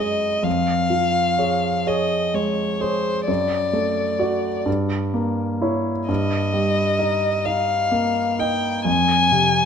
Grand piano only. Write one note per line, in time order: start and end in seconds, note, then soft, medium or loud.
0.00 0.41 F#2 soft
0.00 0.26 G#3 soft
0.00 0.41 G#4 soft
0.00 0.41 D#5 soft
0.43 3.23 F2 soft
0.90 1.68 F3 soft
1.38 1.83 G#4 soft
1.38 1.83 C#5 soft
1.87 2.31 G#4 soft
1.87 2.31 C#5 soft
2.34 3.09 G#3 soft
2.81 3.24 G#4 soft
2.81 3.24 C#5 soft
3.28 4.63 F#2 soft
3.73 4.48 A3 soft
4.19 4.62 F#4 soft
4.19 4.63 D5 soft
4.66 6.04 G2 soft
5.14 5.90 A#3 soft
5.62 6.05 E4 soft
5.62 6.05 C#5 soft
6.08 8.82 G2 soft
6.54 7.27 G3 soft
6.99 7.41 D#4 soft
6.99 7.41 D#5 soft
7.46 7.88 D#4 soft
7.46 7.88 D#5 soft
7.91 8.67 A#3 soft
8.39 8.82 D#4 soft
8.39 8.82 D#5 soft
8.85 9.65 F2 soft
9.32 9.65 C3 soft